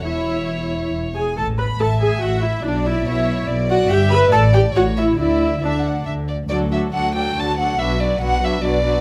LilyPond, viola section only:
\new Staff \with { instrumentName = "Viola section" } { \time 3/4 \key e \mixolydian \tempo 4 = 140 e'2 r8 gis'8 | a'8 b'8 a'8 gis'8 fis'8 e'8 | d'8 e'8 e'4 r8 fis'8 | \key d \major g'8 b'8 a'8 g'8 fis'8 e'8 |
e'4 d'4 r4 | <fis d'>8 <fis d'>8 <fis d'>8 <fis d'>8 <fis d'>8 <fis d'>8 | <fis d'>8 <fis d'>8 <fis d'>8 <fis d'>8 <fis d'>8 <fis d'>8 | }